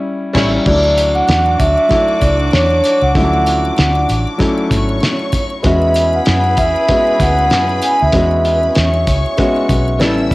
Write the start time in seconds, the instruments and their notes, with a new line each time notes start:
Already playing: grand piano G3 C#4 E4
0.33 fingered electric bass A1, grand piano G3 C#4 E4, horn section A3 C#4 E4, string section C#5 C#6, kick, snare, crash
0.65 fingered electric bass D2, horn section F#3 D4 F#4, grand piano F#3 A3 D4 E4, string section D4 D6, vibraphone D5, kick, crash, muted triangle
0.84 muted triangle
0.98 closed hi-hat, triangle
1.15 vibraphone F#5, muted triangle
1.28 fingered electric bass E2, snare, closed hi-hat, muted triangle
1.46 muted triangle
1.59 fingered electric bass D2, vibraphone E5, kick, closed hi-hat, triangle
1.78 muted triangle
1.89 grand piano F#3 A3 D4 E4, kick, closed hi-hat, muted triangle
2.08 muted triangle
2.21 fingered electric bass C#2, vibraphone D5, kick, closed hi-hat, triangle
2.40 muted triangle
2.51 fingered electric bass E2, vibraphone C#5, snare, closed hi-hat, muted triangle
2.71 muted triangle
2.84 closed hi-hat, triangle
3.02 fingered electric bass C#2, vibraphone F#5, muted triangle
3.14 fingered electric bass D2, grand piano F3 A3 C#4 E4, kick, closed hi-hat, muted triangle
3.21 grand piano F#3
3.33 muted triangle
3.46 closed hi-hat, triangle
3.65 muted triangle
3.77 fingered electric bass D2, snare, closed hi-hat, muted triangle
3.95 muted triangle
4.09 fingered electric bass A1, closed hi-hat, triangle
4.27 muted triangle
4.38 grand piano F#3 A3 C#4 E4, kick, closed hi-hat, muted triangle
4.58 muted triangle
4.70 fingered electric bass G#1, string section C#5 C#6, kick, snare, closed hi-hat, triangle
4.89 muted triangle
5.00 snare, closed hi-hat, muted triangle
5.19 muted triangle
5.32 kick, closed hi-hat, triangle
5.50 muted triangle
5.63 fingered electric bass E2, grand piano G#3 B3 C#4 F#4, horn section C#4 E4 G#4, string section B4 B5, vibraphone E5, kick, closed hi-hat, muted triangle
5.82 muted triangle
5.94 closed hi-hat, triangle
6.13 vibraphone F#5, muted triangle
6.25 fingered electric bass F#2, snare, closed hi-hat, muted triangle
6.44 muted triangle
6.57 fingered electric bass E2, vibraphone E5, kick, closed hi-hat, triangle
6.76 muted triangle
6.88 grand piano G#3 B3 C#4 F#4, kick, closed hi-hat, muted triangle
7.07 muted triangle
7.20 fingered electric bass D2, vibraphone F#5, kick, snare, closed hi-hat, triangle
7.39 muted triangle
7.50 fingered electric bass F#2, snare, closed hi-hat, muted triangle
7.69 muted triangle
7.82 vibraphone G#5, closed hi-hat, triangle
8.00 fingered electric bass D2, vibraphone E5, muted triangle
8.12 fingered electric bass E2, grand piano G#3 B3 C#4 F#4, kick, closed hi-hat, muted triangle
8.31 muted triangle
8.45 closed hi-hat, triangle
8.63 muted triangle
8.75 fingered electric bass E2, string section C#5 C#6, snare, closed hi-hat, muted triangle
8.94 muted triangle
9.07 fingered electric bass C#2, kick, closed hi-hat, triangle
9.26 muted triangle
9.37 grand piano G#3 B3 C#4 F#4, kick, closed hi-hat, muted triangle
9.56 muted triangle
9.69 fingered electric bass B1, kick, closed hi-hat, triangle
9.88 muted triangle
9.99 fingered electric bass A1, grand piano G3 B3 C#4 E4, horn section C#4 E4 A4, string section E5 E6, snare, closed hi-hat, muted triangle
10.18 muted triangle
10.31 kick